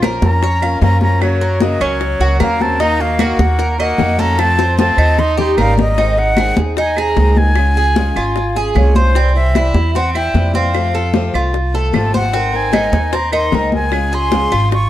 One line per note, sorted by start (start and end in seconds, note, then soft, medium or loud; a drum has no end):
0.00 0.17 A#1 medium
0.00 0.22 F3 medium
0.00 0.22 A#3 medium
0.00 0.42 A#4 medium
0.00 high bongo medium
0.00 high conga medium
0.00 claves medium
0.05 0.22 C#4 medium
0.05 0.21 F4 medium
0.22 0.78 F2 medium
0.22 0.42 A#3 soft
0.22 0.78 C#4 medium
0.22 0.42 C#4 soft
0.22 0.41 F4 soft
0.22 0.79 A#5 medium
0.22 high bongo soft
0.22 high conga medium
0.42 0.62 C#5 medium
0.42 muted steel-string acoustic guitar stroke medium
0.42 high bongo medium
0.42 high conga soft
0.62 0.81 A#3 soft
0.62 0.82 C#4 soft
0.62 0.81 F4 soft
0.62 1.01 F5 medium
0.62 high bongo soft
0.62 high conga soft
0.62 claves medium
0.81 1.75 F#2 medium
0.81 1.21 F3 medium
0.81 1.21 A#3 medium
0.81 1.01 C#4 medium
0.81 1.22 C#4 medium
0.81 1.22 F4 medium
0.81 1.01 A#5 loud
0.81 high bongo soft
0.81 low bongo medium
0.81 high conga medium
1.01 1.23 C#4 medium
1.01 1.23 A#5 medium
1.01 high bongo soft
1.01 high conga medium
1.21 1.41 C#3 medium
1.21 1.61 F#3 medium
1.21 1.41 F#3 medium
1.21 1.41 A#3 medium
1.21 1.41 C#4 medium
1.21 1.40 F#4 medium
1.21 1.63 C#5 medium
1.21 high bongo medium
1.21 high conga soft
1.21 claves medium
1.41 1.61 A#3 soft
1.41 1.61 C#4 soft
1.41 1.61 F#4 medium
1.41 1.80 A#4 medium
1.41 high conga soft
1.60 1.80 C#3 medium
1.60 1.81 F#3 medium
1.60 1.80 F#3 medium
1.60 1.81 A#3 medium
1.60 1.80 C#4 medium
1.60 1.79 F#4 medium
1.60 1.84 D#5 medium
1.60 high bongo medium
1.60 high conga medium
1.80 2.18 C#2 medium
1.80 2.40 F#3 medium
1.80 2.00 A#3 soft
1.80 2.20 C#4 medium
1.80 2.00 C#4 soft
1.80 2.00 F#4 soft
1.80 2.41 C#5 medium
1.80 high bongo soft
1.80 high conga soft
1.80 claves medium
2.00 muted steel-string acoustic guitar stroke medium
2.00 high bongo medium
2.00 high conga soft
2.20 2.39 C#2 medium
2.20 2.40 A#3 soft
2.20 2.40 C#4 soft
2.20 2.40 F#4 soft
2.20 2.40 F#4 medium
2.20 high bongo soft
2.20 high conga soft
2.40 3.33 D#2 medium
2.40 2.79 C#3 medium
2.40 2.79 F#3 medium
2.40 2.62 A#3 medium
2.40 2.79 A#3 medium
2.40 2.80 C#4 medium
2.40 2.80 F#4 medium
2.40 2.79 A#4 medium
2.40 2.63 F5 medium
2.40 high bongo soft
2.40 low bongo medium
2.40 high conga medium
2.40 claves medium
2.60 2.82 C4 medium
2.60 2.82 A5 medium
2.60 high bongo soft
2.60 high conga medium
2.79 2.99 D#3 medium
2.79 2.99 A#3 medium
2.79 3.19 D#4 medium
2.79 3.02 D#4 medium
2.79 2.99 D#4 medium
2.79 2.98 F#4 medium
2.79 3.02 A#5 loud
2.79 high bongo medium
2.99 3.40 A#3 medium
2.99 3.19 A#3 soft
2.99 3.19 D#4 soft
2.99 3.19 F#4 soft
2.99 3.42 F5 medium
2.99 high conga soft
3.19 3.39 D#3 medium
3.19 3.39 A#3 medium
3.19 3.38 D#4 medium
3.19 3.59 F#4 medium
3.19 3.37 F#4 medium
3.19 high bongo medium
3.19 high conga medium
3.19 claves medium
3.38 3.95 D#2 medium
3.38 3.79 A#3 medium
3.38 3.58 A#3 soft
3.38 3.58 D#4 soft
3.38 3.58 F#4 soft
3.38 3.79 F#5 medium
3.38 high bongo soft
3.38 high conga loud
3.59 3.79 A#4 medium
3.59 muted steel-string acoustic guitar stroke medium
3.59 high bongo medium
3.59 high conga soft
3.78 4.21 A#3 medium
3.78 3.98 A#3 soft
3.78 3.99 D#4 soft
3.78 3.98 F#4 soft
3.78 4.18 D#5 medium
3.78 4.22 F#5 medium
3.78 high bongo soft
3.78 high conga soft
3.78 claves medium
3.98 4.92 F2 medium
3.98 4.38 D#3 medium
3.98 4.38 A#3 medium
3.98 4.39 D#4 medium
3.98 4.39 F#4 medium
3.98 high bongo soft
3.98 low bongo medium
3.98 high conga medium
4.19 4.41 C#4 medium
4.19 4.58 A4 medium
4.19 4.41 A#5 medium
4.19 high bongo soft
4.19 high conga medium
4.38 4.58 C3 medium
4.38 4.58 F3 medium
4.38 4.58 A3 medium
4.38 4.79 C4 medium
4.38 4.58 C4 medium
4.38 4.57 F4 medium
4.38 4.78 A5 loud
4.38 high bongo medium
4.38 claves medium
4.58 4.78 A3 soft
4.58 4.78 C4 soft
4.58 4.78 F4 soft
4.58 4.97 C5 medium
4.58 high bongo medium
4.58 high conga soft
4.78 4.97 C3 medium
4.78 4.98 F3 medium
4.78 4.98 A3 medium
4.78 5.21 C4 medium
4.78 4.98 C4 medium
4.78 4.96 F4 medium
4.78 5.21 A5 loud
4.78 high bongo medium
4.78 high conga medium
4.97 5.53 D#2 medium
4.97 5.18 A3 soft
4.97 5.18 C4 soft
4.97 5.37 D#4 medium
4.97 5.17 F4 soft
4.97 high conga soft
4.97 claves medium
5.18 5.39 D#4 medium
5.18 5.39 C6 medium
5.18 muted steel-string acoustic guitar stroke soft
5.18 low bongo medium
5.18 high conga soft
5.37 5.57 G3 soft
5.37 5.58 C#4 soft
5.37 5.76 D#4 medium
5.37 5.57 G4 medium
5.37 5.57 G4 soft
5.37 5.58 C6 medium
5.37 low bongo medium
5.37 high conga soft
5.57 6.51 G#1 medium
5.57 5.96 D#3 medium
5.57 5.97 G3 medium
5.57 5.97 C#4 medium
5.57 5.98 G4 medium
5.57 5.96 A#4 medium
5.57 5.77 F5 medium
5.57 high conga medium
5.57 claves medium
5.78 6.20 D#5 medium
5.78 low bongo medium
5.78 high conga medium
5.97 6.17 D#3 medium
5.97 6.17 G#3 medium
5.97 6.17 C4 medium
5.97 6.36 D#4 medium
5.97 6.17 D#4 medium
5.97 6.16 G#4 medium
5.97 high bongo medium
5.97 high conga soft
6.17 6.37 C4 soft
6.17 6.37 D#4 soft
6.17 6.36 G#4 medium
6.17 6.55 F#5 loud
6.17 high conga soft
6.37 6.56 D#3 medium
6.37 6.57 G#3 medium
6.37 6.57 C4 medium
6.37 6.57 D#4 medium
6.37 6.76 G#4 medium
6.37 6.56 G#4 medium
6.37 high bongo medium
6.37 high conga medium
6.37 claves medium
6.57 7.12 D#2 medium
6.57 6.76 C4 soft
6.57 6.77 D#4 soft
6.57 6.76 G#4 soft
6.57 high bongo soft
6.57 high conga medium
6.77 6.97 D#4 medium
6.77 7.00 G#5 medium
6.77 muted steel-string acoustic guitar stroke medium
6.77 high bongo medium
6.77 high conga soft
6.96 7.17 C4 soft
6.96 7.16 D#4 soft
6.96 7.16 G#4 soft
6.96 7.36 G#4 medium
6.96 7.39 A#5 medium
6.96 high bongo soft
6.96 high conga soft
6.96 claves medium
7.16 8.10 C#2 medium
7.16 7.55 D#3 medium
7.16 7.55 G#3 medium
7.16 7.56 C4 medium
7.16 7.57 D#4 medium
7.16 7.57 G#4 medium
7.16 high bongo soft
7.16 low bongo medium
7.16 high conga medium
7.36 8.56 G#5 loud
7.36 high bongo soft
7.36 high conga medium
7.56 7.75 C#3 medium
7.56 7.75 G#3 medium
7.56 7.76 C#4 medium
7.56 7.76 F4 medium
7.56 7.75 G#4 medium
7.56 high bongo medium
7.56 high conga soft
7.56 claves medium
7.76 7.96 C#4 soft
7.76 7.96 F4 soft
7.76 7.95 G#4 soft
7.76 8.15 G#4 medium
7.76 high conga soft
7.96 8.15 C#3 medium
7.96 8.15 G#3 medium
7.96 8.16 C#4 medium
7.96 8.16 F4 medium
7.96 8.15 G#4 medium
7.96 high bongo medium
7.96 high conga medium
8.16 8.72 G#1 medium
8.16 8.36 C#4 soft
8.16 8.55 F4 medium
8.16 8.36 F4 soft
8.16 8.35 G#4 soft
8.16 high bongo soft
8.16 high conga soft
8.16 claves medium
8.36 muted steel-string acoustic guitar stroke medium
8.36 high bongo medium
8.36 high conga soft
8.56 8.75 C#4 soft
8.56 8.75 F4 soft
8.56 8.75 G#4 soft
8.56 8.95 G#4 medium
8.56 high bongo soft
8.56 high conga soft
8.75 9.69 C2 medium
8.75 9.14 G#3 medium
8.75 9.15 C#4 medium
8.75 9.15 F4 medium
8.75 9.15 G#4 medium
8.75 8.98 C#5 medium
8.75 high bongo soft
8.75 low bongo medium
8.75 high conga medium
8.75 claves medium
8.95 9.15 C5 medium
8.95 9.35 C5 medium
8.95 high bongo soft
8.95 high conga medium
9.15 9.34 C3 medium
9.15 9.34 E3 medium
9.15 9.35 G3 medium
9.15 9.54 C4 medium
9.15 9.35 C4 medium
9.15 9.34 E4 medium
9.15 high bongo medium
9.35 9.55 G3 soft
9.35 9.55 C4 soft
9.35 9.54 E4 soft
9.35 9.91 E5 medium
9.35 high conga soft
9.55 9.74 C3 medium
9.55 9.74 E3 medium
9.55 9.75 G3 medium
9.55 9.75 C4 medium
9.55 9.94 E4 medium
9.55 9.74 E4 medium
9.55 high bongo medium
9.55 high conga medium
9.55 claves medium
9.74 10.30 E2 medium
9.74 9.95 G3 soft
9.74 9.95 C4 soft
9.74 9.94 E4 soft
9.74 high bongo soft
9.74 high conga medium
9.95 10.15 C4 medium
9.95 10.13 F#5 loud
9.95 muted steel-string acoustic guitar stroke medium
9.95 high bongo medium
9.95 high conga soft
10.15 10.35 G3 soft
10.15 10.35 C4 soft
10.15 10.34 E4 medium
10.15 10.54 E4 medium
10.15 10.52 G5 medium
10.15 high bongo soft
10.15 high conga soft
10.15 claves medium
10.34 11.28 F2 medium
10.34 10.72 C3 medium
10.34 10.74 E3 medium
10.34 10.74 G3 medium
10.34 10.74 C4 medium
10.34 10.75 E4 medium
10.34 high bongo soft
10.34 low bongo medium
10.34 high conga medium
10.54 10.93 C4 medium
10.54 11.43 F5 medium
10.54 high bongo soft
10.54 high conga medium
10.74 10.93 C3 medium
10.74 10.94 F3 medium
10.74 10.94 A3 medium
10.74 10.94 C4 medium
10.74 10.93 F4 medium
10.74 high bongo medium
10.74 high conga soft
10.74 claves medium
10.94 11.13 A3 soft
10.94 11.14 C4 soft
10.94 11.13 F4 medium
10.94 11.33 A4 medium
10.94 high conga soft
11.13 11.33 C3 medium
11.13 11.33 F3 medium
11.13 11.33 A3 medium
11.13 11.33 C4 medium
11.13 11.32 F4 medium
11.13 high bongo medium
11.13 high conga medium
11.33 11.90 C2 medium
11.33 11.53 A3 soft
11.33 11.53 C4 soft
11.33 11.53 F4 soft
11.33 11.73 F4 medium
11.33 high bongo soft
11.33 high conga soft
11.33 claves medium
11.54 muted steel-string acoustic guitar stroke soft
11.54 high bongo medium
11.54 high conga soft
11.73 11.93 A3 soft
11.73 11.93 C4 soft
11.73 11.92 F4 soft
11.73 12.13 A4 medium
11.73 high bongo soft
11.73 high conga soft
11.93 12.87 G#1 medium
11.93 12.32 C3 medium
11.93 12.33 F3 medium
11.93 12.33 A3 medium
11.93 12.33 C4 medium
11.93 12.33 F4 medium
11.93 12.13 A5 medium
11.93 high bongo soft
11.93 low bongo medium
11.93 high conga medium
11.93 claves medium
12.13 12.33 C5 medium
12.13 12.57 F#5 medium
12.13 high bongo soft
12.13 high conga medium
12.33 12.52 G#3 medium
12.33 12.72 C4 medium
12.33 12.53 C4 medium
12.33 12.53 D#4 medium
12.33 12.51 A#4 medium
12.33 high bongo medium
12.33 high conga soft
12.52 12.71 C4 soft
12.52 12.73 D#4 soft
12.52 12.72 A#4 medium
12.52 13.16 G#5 medium
12.52 high conga soft
12.72 12.91 G#3 medium
12.72 12.92 C4 medium
12.72 13.12 D#4 medium
12.72 12.92 D#4 medium
12.72 12.90 A#4 medium
12.72 high bongo medium
12.72 high conga medium
12.72 claves medium
12.92 13.48 D#2 medium
12.92 13.12 C4 soft
12.92 13.12 D#4 soft
12.92 13.11 A#4 soft
12.92 high bongo soft
12.92 high conga medium
13.12 13.32 C4 medium
13.12 13.34 A#5 medium
13.12 muted steel-string acoustic guitar stroke medium
13.12 high bongo medium
13.12 high conga soft
13.32 13.51 C4 soft
13.32 13.71 D#4 medium
13.32 13.52 D#4 soft
13.32 13.52 A#4 medium
13.32 13.56 C6 medium
13.32 high bongo soft
13.32 high conga soft
13.32 claves medium
13.52 14.46 C#2 medium
13.52 13.91 G#3 medium
13.52 13.92 C4 medium
13.52 13.92 D#4 medium
13.52 13.92 A#4 medium
13.52 13.74 A#5 medium
13.52 high bongo soft
13.52 low bongo medium
13.52 high conga medium
13.72 14.16 G#5 medium
13.72 high bongo soft
13.72 high conga medium
13.92 14.11 C#3 medium
13.92 14.11 G#3 medium
13.92 14.12 C#4 medium
13.92 14.12 F4 medium
13.92 14.10 G#4 medium
13.92 high bongo medium
13.92 high conga soft
13.92 claves medium
14.12 14.31 C#4 soft
14.12 14.31 F4 medium
14.12 14.31 G#4 medium
14.12 14.51 G#4 medium
14.12 14.73 C6 loud
14.12 high conga soft
14.30 14.50 C#3 medium
14.30 14.51 G#3 medium
14.30 14.51 C#4 medium
14.30 14.51 F4 medium
14.30 14.50 G#4 medium
14.30 high bongo medium
14.30 high conga medium
14.51 14.90 G#1 medium
14.51 14.71 C#4 soft
14.51 14.90 F4 medium
14.51 14.71 F4 soft
14.51 14.70 G#4 soft
14.51 high bongo soft
14.51 high conga soft
14.51 claves medium
14.71 14.90 C#6 medium
14.71 muted steel-string acoustic guitar stroke medium
14.71 high bongo medium
14.71 high conga soft